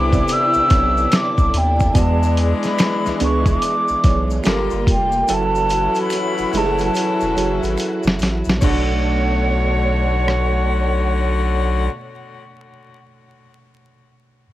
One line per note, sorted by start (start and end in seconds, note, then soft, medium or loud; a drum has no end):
0.00 0.23 C2 medium
0.00 0.13 C3 medium
0.00 1.92 D3 medium
0.00 1.50 E3 medium
0.00 0.14 B3 loud
0.00 1.50 D4 medium
0.00 4.42 D4 medium
0.00 0.14 E4 medium
0.00 1.92 E4 medium
0.00 1.50 G4 medium
0.00 0.11 C5 medium
0.00 0.15 D5 loud
0.00 0.34 D6 loud
0.13 0.66 C3 medium
0.13 0.66 B3 medium
0.13 0.66 E4 medium
0.13 0.67 D5 medium
0.13 kick medium
0.13 closed hi-hat soft
0.13 maracas soft
0.28 closed hi-hat medium
0.28 maracas medium
0.33 1.17 E6 loud
0.54 0.62 B1 soft
0.54 maracas soft
0.70 1.07 B1 medium
0.70 1.87 B3 medium
0.70 1.86 C4 medium
0.70 1.87 E4 medium
0.70 0.79 C#5 medium
0.70 kick loud
0.70 snare soft
0.70 closed hi-hat medium
0.70 maracas soft
0.78 1.91 D5 medium
0.97 maracas soft
1.12 1.59 D6 loud
1.12 finger snap medium
1.12 snare loud
1.12 closed hi-hat medium
1.12 maracas medium
1.38 1.51 C2 medium
1.38 kick loud
1.38 maracas soft
1.54 1.89 D#2 loud
1.54 1.95 G5 medium
1.54 closed hi-hat medium
1.80 kick medium
1.80 maracas soft
1.94 2.54 E2 loud
1.94 4.42 E3 medium
1.94 3.29 E3 medium
1.94 3.99 E3 medium
1.94 4.42 G#3 medium
1.94 3.99 G#3 medium
1.94 3.29 B3 medium
1.94 3.99 D4 medium
1.94 2.03 F#4 medium
1.94 3.30 D5 loud
1.94 2.01 G#5 medium
1.94 kick loud
1.94 closed hi-hat loud
1.94 maracas medium
1.99 3.33 G#3 medium
1.99 2.34 A5 loud
2.23 maracas medium
2.37 closed hi-hat medium
2.63 3.18 B5 loud
2.63 snare soft
2.63 closed hi-hat soft
2.63 maracas soft
2.79 finger snap medium
2.79 muted nylon-string guitar stroke soft
2.79 snare loud
2.79 closed hi-hat medium
2.79 maracas medium
3.06 3.12 C#2 soft
3.06 snare soft
3.06 maracas medium
3.20 3.56 C#2 medium
3.20 3.42 B3 loud
3.20 3.42 D4 loud
3.20 3.43 G#4 loud
3.20 closed hi-hat medium
3.20 maracas soft
3.24 3.47 C#6 medium
3.45 3.99 E3 medium
3.45 3.99 B3 medium
3.45 3.99 G#4 medium
3.45 4.00 D5 medium
3.45 kick medium
3.45 closed hi-hat soft
3.45 maracas medium
3.51 4.28 D6 medium
3.62 closed hi-hat medium
3.62 maracas medium
3.88 3.96 B1 soft
3.88 maracas soft
4.04 4.40 B1 medium
4.04 4.45 E3 medium
4.04 4.45 B3 medium
4.04 4.46 G#4 medium
4.04 4.46 C#5 medium
4.04 kick loud
4.04 snare soft
4.04 closed hi-hat medium
4.04 maracas soft
4.30 maracas soft
4.44 4.68 G1 loud
4.44 4.85 D3 medium
4.44 5.22 G3 loud
4.44 5.27 G3 medium
4.44 4.85 A#3 medium
4.44 5.27 A#3 medium
4.44 5.27 F4 medium
4.44 5.22 F4 medium
4.44 4.86 G4 medium
4.44 5.23 A4 medium
4.44 5.23 A#4 loud
4.44 finger snap medium
4.44 snare loud
4.44 closed hi-hat medium
4.44 maracas soft
4.70 4.85 G1 medium
4.70 maracas soft
4.87 5.23 F1 loud
4.87 kick medium
4.87 closed hi-hat medium
4.91 5.35 G5 medium
5.12 maracas soft
5.28 5.88 F#1 loud
5.28 8.16 E3 medium
5.28 6.45 F#3 loud
5.28 8.59 F#3 medium
5.28 8.16 C#4 medium
5.28 6.45 E4 medium
5.28 8.59 E4 medium
5.28 8.59 F#4 medium
5.28 6.45 F#4 medium
5.28 8.16 A4 medium
5.28 6.46 A4 loud
5.28 closed hi-hat loud
5.28 maracas medium
5.34 5.99 A5 loud
5.55 maracas soft
5.70 closed hi-hat medium
5.70 maracas medium
5.95 closed hi-hat soft
5.95 maracas soft
6.02 6.59 B5 loud
6.10 finger snap medium
6.10 muted nylon-string guitar stroke soft
6.10 closed hi-hat medium
6.10 maracas medium
6.38 6.45 F#1 soft
6.38 maracas medium
6.53 6.89 F#1 loud
6.53 6.77 F#3 medium
6.53 6.79 A3 medium
6.53 6.77 E4 medium
6.53 6.79 E4 medium
6.53 6.78 G#4 medium
6.53 6.80 G#4 loud
6.53 6.78 A4 medium
6.53 closed hi-hat medium
6.53 maracas soft
6.58 6.82 A5 loud
6.79 7.33 F#3 medium
6.79 7.33 E4 medium
6.79 7.33 F#4 medium
6.79 7.33 A4 medium
6.79 closed hi-hat soft
6.79 maracas soft
6.85 7.61 A5 medium
6.95 closed hi-hat medium
6.95 maracas medium
7.21 7.35 E1 loud
7.21 maracas soft
7.37 7.59 F#1 medium
7.37 8.53 F#3 medium
7.37 8.53 E4 medium
7.37 8.54 G#4 medium
7.37 8.54 A4 medium
7.37 closed hi-hat medium
7.37 maracas soft
7.63 7.76 G#1 medium
7.63 closed hi-hat soft
7.63 maracas soft
7.78 finger snap medium
7.78 closed hi-hat medium
7.78 maracas medium
8.03 8.18 F#1 loud
8.03 maracas soft
8.08 snare loud
8.19 8.43 A1 loud
8.19 snare loud
8.19 closed hi-hat medium
8.19 maracas medium
8.44 8.60 A#1 loud
8.44 maracas soft
8.49 snare medium
8.49 closed hi-hat soft
8.57 11.84 B2 medium
8.57 11.87 B2 medium
8.57 11.86 A3 medium
8.57 11.87 A3 medium
8.57 11.87 D4 medium
8.57 11.87 C#5 medium
8.57 maracas medium
8.61 11.88 B1 loud
8.61 11.88 D3 medium
8.61 11.89 D4 medium
8.61 12.13 D4 medium
8.61 11.88 F#4 medium
8.61 12.15 A4 medium
8.61 11.88 C#5 medium
8.61 kick loud
8.61 crash medium
8.65 11.92 C#5 medium
8.65 12.17 C#5 medium
8.65 11.92 F#5 medium
10.28 cross-stick medium